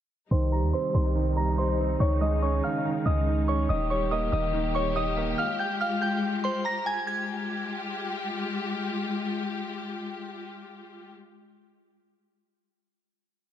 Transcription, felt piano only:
0.31 D#3
0.52 G3
0.74 C4
0.95 D#3
1.15 D#3
1.36 G3
1.58 D#4
1.80 C4
2.00 D#3
2.21 G#3
2.43 C#4
2.64 D#3
2.85 D#3
3.05 G#3
3.27 D#4
3.48 C#4
3.70 D#3
3.91 G3
4.11 A#3
4.32 D#3
4.53 D#3
4.75 G3
4.95 D#4
5.17 A#3

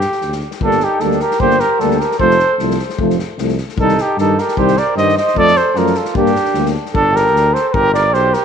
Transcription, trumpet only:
Already playing: G4
0.64 A4
0.84 G4
1.00 A4
1.21 A#4
1.41 C5
1.60 A#4
1.80 A4
2.00 A#4
2.19 C5
3.80 A4
4.02 G4
4.19 A4
4.40 A#4
4.58 C5
4.79 D5
4.97 D#5
5.18 D#5
5.38 D5
5.57 C5
5.78 A#4
5.97 A4
6.16 G4
6.95 A4
7.16 A#4
7.54 C5
7.69 C5
7.74 A#4
7.94 D5
8.14 C5
8.34 A#4

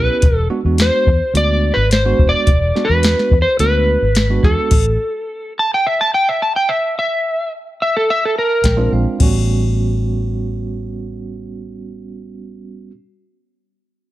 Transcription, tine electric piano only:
Already playing: B3 C#4 E4 G4
0.50 G#3 B3 D4 F#4
0.66 G#3 B3 D4 F#4
1.34 G#3 B3 D4 F#4
2.05 G#3 B3 D4 F#4
2.75 G#3 B3 D4 F#4
2.90 G#3 B3 D4 F#4
3.60 G#3 B3 D4 F#4
4.30 G#3 B3 D4 F#4
8.35 A5
8.64 G5
8.77 G#3 C4 D4 F4
8.93 F5
9.19 G3 B3 C#4 F#4

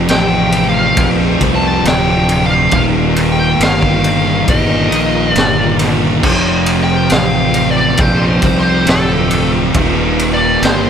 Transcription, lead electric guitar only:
0.10 G5
0.69 F5
1.55 A5
1.87 G5
2.46 F5
3.32 G5
3.63 F5
4.50 D#5
5.33 D5
6.84 G5
7.12 F5
7.71 D5
8.00 C5
8.60 C5
8.90 A4
10.34 D5
10.63 C5

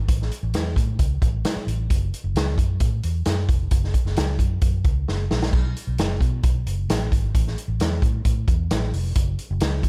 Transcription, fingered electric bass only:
0.09 A1
0.43 A1
0.54 E2
0.77 A2
0.99 C#2
1.22 A1
1.56 muted fingered electric bass stroke
1.67 A1
1.91 F#1
2.24 F#1
2.35 C#2
2.58 F#2
2.80 A2
3.04 E2
3.26 F#2
3.49 F1
3.71 F#1
4.05 F#1
4.17 C#2
4.39 F#2
4.62 F#2
4.85 C#2
5.09 F#1
5.31 A#1
5.53 B1
5.87 B1
5.99 F#1
6.21 B2
6.44 B1
6.66 F#1
6.89 A1
7.12 G#1
7.35 A1
7.68 A1
7.80 E2
8.02 A2
8.25 A2
8.48 E2
8.71 A1
8.94 F1
9.16 F#1
9.51 F#1
9.61 C#2
9.83 F#2

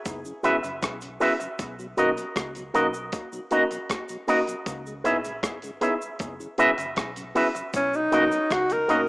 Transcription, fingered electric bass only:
0.06 F#1
0.45 G#1
0.64 F#1
0.83 B1
1.59 B1
1.98 B1
2.36 C#2
2.75 B1
4.66 C#2
5.05 A#1
5.43 G#1
6.20 F#1
6.58 G#1
6.78 F#1
6.97 B1
7.74 B1
8.12 B1
8.51 C#2
8.89 B1

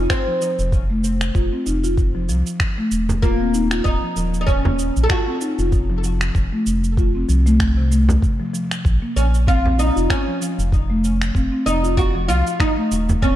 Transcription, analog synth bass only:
0.59 F1
1.35 F1
1.67 F1
2.29 C2
2.91 D#1
3.85 D#1
4.16 D#1
4.97 A#1
5.59 F1
6.35 F1
6.66 F1
7.29 C2
8.85 A#1
9.16 A#1
9.96 F1
10.59 F1
11.35 F1
11.66 F1
12.29 C2
12.91 D#1

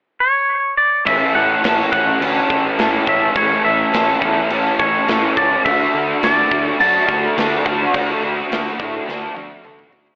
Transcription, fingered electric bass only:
1.07 A1
1.35 A2
1.64 A1
1.93 A1
2.20 D2
2.50 A1
2.78 A2
3.07 A1
3.36 A1
3.65 A1
3.94 A1
4.22 E2
4.50 A1
4.80 A1
5.08 A2
5.37 C#2
5.66 D2
5.94 D3
6.23 D2
6.51 D2
6.80 F#2
7.08 D2
7.37 D3
7.66 D2
7.95 D2
8.22 D2
8.51 D2
8.80 A2
9.09 D2
9.37 D2
9.66 D3
9.93 D2

